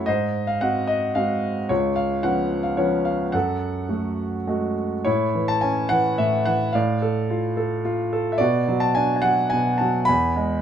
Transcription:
0.06 G#2 C5 D#5
0.47 F5
0.61 G#3 C4 F#4 F#5
0.87 D#5
1.15 G#3 C4 F#4 F5
1.69 C#2 F4 C#5
1.96 F5
2.23 F3 B3 C#4 F#5
2.63 F5
2.77 F3 B3 C#4 C#5
3.05 F5
3.32 F#2 A4 F#5
3.89 F#3 A3 F#4
4.47 G#3 A3 F#4
5.05 A2 E4 C#5
5.35 E3
5.48 A5
5.61 C#4 G#5
5.89 E3 F#5
6.18 A2 E5
6.45 E3 F#5
6.73 A2 D5 F5
7.02 A4
7.30 F4
7.57 A4
7.85 F4
8.13 A4
8.32 E5
8.38 B2 F#4 D5
8.68 F#3
8.80 A5
8.95 D4 G#5
9.16 G#5
9.22 F#3 F#5
9.50 B2 G#5
9.78 F#3 A5
10.05 E2 G#5 B5
10.36 G#3

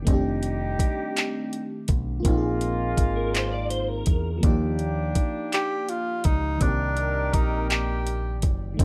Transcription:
0.02 D#3 A3
0.07 F1 G3 C4 D4 D#4 G4, kick, closed hi-hat
0.13 G4
0.43 closed hi-hat
0.79 muted fingered electric bass stroke, kick, closed hi-hat
1.17 clap, closed hi-hat
1.53 closed hi-hat
1.88 B1, kick, closed hi-hat
2.20 A#3 F4
2.24 A#1 G#3 A#3 C4 D#4 F4, kick, closed hi-hat
2.31 G4
2.37 G#4
2.61 closed hi-hat
2.97 G#1, kick, closed hi-hat
3.16 A#4
3.34 C5, clap, closed hi-hat
3.52 D5
3.70 C5, closed hi-hat
3.88 A#4
4.06 E2, kick, closed hi-hat
4.38 F3 A#3
4.42 D#2 A#3 D4 G4 D5, kick, closed hi-hat
4.46 D#4 G4
4.79 closed hi-hat
5.15 muted fingered electric bass stroke, kick, closed hi-hat
5.53 G4, clap, closed hi-hat
5.89 F4, closed hi-hat
6.24 C#2 D#4, kick, closed hi-hat
6.57 D#3 A#3, closed hi-hat
6.61 C2 D#3 C4 D4 G4 A#4, kick
6.65 G4 D5
6.97 closed hi-hat
7.33 A#1 D#4, kick, closed hi-hat
7.69 G4, clap, closed hi-hat
8.07 closed hi-hat
8.42 F#1, kick, closed hi-hat
8.74 D#3 A3
8.79 F1 A3 C4 D#4 A4, kick, closed hi-hat

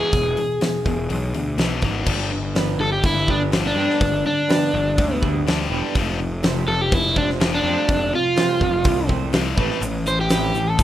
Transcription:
Already playing: E2 B2 E3 G#4
0.13 E1 E2 B2, kick, open hi-hat
0.37 E2 B2, open hi-hat
0.61 E2 B2, snare, open hi-hat
0.86 E1 E2 B2, kick, open hi-hat
1.09 B1 E2 B2, open hi-hat
1.34 D2 E2 B2, open hi-hat
1.58 B1 E2 B2 E3, snare, open hi-hat
1.82 G#1 E2 B2 E3, kick, open hi-hat
2.06 G1 G2 D3 G3, muted clean electric guitar stroke, kick, crash
2.31 G2 D3, muted clean electric guitar stroke
2.54 G2 D3 B3 D4 G4 B4, snare, open hi-hat
2.78 G1 G2 D3 A4, muted clean electric guitar stroke
2.92 G4
3.03 G2 D3 E4, muted clean electric guitar stroke, kick, open hi-hat
3.28 G2 D3 B3 D4 G4 B4, kick
3.51 G2 D3 G3, muted clean electric guitar stroke, snare, open hi-hat
3.67 D4
3.76 G2 D3 G3 B3 D4 G4 B4
3.90 snare
4.00 G1 G2 D3, kick, open hi-hat
4.24 G2 D3 D4, muted clean electric guitar stroke
4.48 G2 D3 B3 D4 G4 B4, snare, open hi-hat
4.72 G1 G2 D3, muted clean electric guitar stroke
4.97 D2 G2 D3, muted clean electric guitar stroke, kick, open hi-hat
5.21 G2 D3 B3 D4 G4 B4, kick
5.46 G2 D3 G3, muted clean electric guitar stroke, snare, open hi-hat
5.70 E1 G2 D3 G3 B3 D4 G4 B4
5.95 F1 F2 C3 F3, muted clean electric guitar stroke, kick, open hi-hat
6.19 F2 C3, muted clean electric guitar stroke
6.43 F2 C3 G3 A3 G4 C5, snare, open hi-hat
6.66 F1 F2 C3 A4, muted clean electric guitar stroke
6.81 G4
6.92 F2 C3 E4, muted clean electric guitar stroke, kick, open hi-hat
7.16 F2 C3 G3 A3 D4 G4 C5, kick
7.30 snare
7.40 F2 C3 F3, muted clean electric guitar stroke, snare, open hi-hat
7.54 D4
7.64 F2 C3 F3 G3 A3 G4 C5
7.88 F1 F2 C3, muted clean electric guitar stroke, kick, open hi-hat
8.12 F2 C3 F4, muted clean electric guitar stroke
8.35 F2 C3 G3 A3 G4 C5, snare, open hi-hat
8.60 F1 F2 C3, muted clean electric guitar stroke, kick
8.84 C2 F2 C3, muted clean electric guitar stroke, kick, open hi-hat
9.08 F2 C3 G3 A3 G4 C5, kick
9.33 F2 C3 F3, muted clean electric guitar stroke, snare, open hi-hat
9.57 A1 A2 E3 A3 C4 E4 B4, kick
9.70 snare
9.81 A1 A2 E3, muted clean electric guitar stroke, open hi-hat, shaker
10.05 A2 E3 C5, muted clean electric guitar stroke, shaker
10.21 G4
10.29 A2 E3 A3 C4 E4 B4, snare, open hi-hat, shaker
10.54 A1 A2 E3, muted clean electric guitar stroke, shaker
10.70 A4
10.79 A2 E3, muted clean electric guitar stroke, kick, open hi-hat, shaker

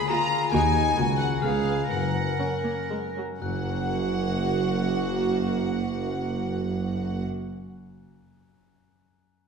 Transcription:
Already playing: D3 A#3 F4 A#4
0.08 G#3 F4 G#4 A#5
0.31 F4
0.52 D#2 D#3 A#3 D#4 F#4 G#5
0.75 F#4 A#4
0.97 C#2 C#3 A#3 F#4
1.18 F#4 A#4 F#5 F#6
1.42 C#2 C#3 B3 G#4 F5 F6
1.66 G#4 B4
1.90 F#1 F#2 A#4 F#5 F#6
2.15 C#4
2.39 C#4 A#4
2.64 A#3 C#5
2.89 G#3 A#4
3.15 F#3 F#4
3.40 F#1 F#2 A#3 F#4 F#5 F#6
3.48 F#3
3.56 C#4
3.62 F#4
3.69 A#4
3.76 F#5

